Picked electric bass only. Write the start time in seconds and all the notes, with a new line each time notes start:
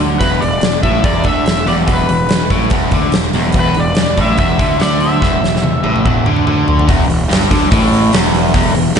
Already playing: D2
0.21 E1
0.42 E1
0.62 E1
0.83 A1
1.04 E1
1.25 D2
1.47 E1
1.66 E1
1.88 E1
2.09 E1
2.29 E1
2.50 A1
2.71 E1
2.92 D2
3.14 E1
3.33 E1
3.55 E1
3.77 E1
3.97 E1
4.18 A1
4.39 E1
4.60 D2
4.82 D2
5.23 E1
5.44 E1
5.64 E1
5.85 A1
6.06 E1
6.28 D2
6.47 D2
6.89 E1
7.10 E1
7.30 G1
7.51 D2
7.72 A1
8.13 E1
8.55 E1
8.75 E1
8.95 G1